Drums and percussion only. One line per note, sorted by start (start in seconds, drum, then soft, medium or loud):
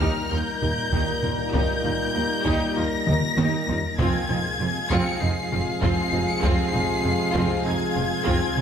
0.01 taiko medium
0.62 taiko low-mid medium
0.93 taiko medium
1.23 taiko low-mid medium
1.54 taiko loud
1.84 taiko low-mid medium
2.46 taiko medium
3.07 taiko mid loud
3.38 taiko high loud
3.69 taiko low loud
3.99 taiko loud
4.30 taiko low-mid medium
4.91 taiko medium
5.52 taiko low-mid medium
5.82 taiko medium
6.13 taiko low-mid medium
6.43 taiko loud
6.74 taiko low-mid medium
7.35 taiko medium
7.96 taiko low-mid medium
8.27 taiko medium
8.57 taiko low-mid medium